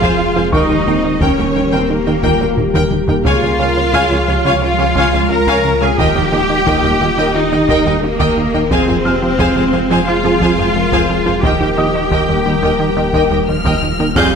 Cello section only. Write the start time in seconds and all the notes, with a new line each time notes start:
Already playing: F4
0.53 D#4
1.21 C#4
1.73 C4
1.89 A#3
3.25 F4
4.62 F4
5.30 A#4
5.82 G#4
5.98 G4
7.35 D#4
8.03 A#3
8.71 C4
10.07 F4
11.43 G4
13.48 F3
14.16 G3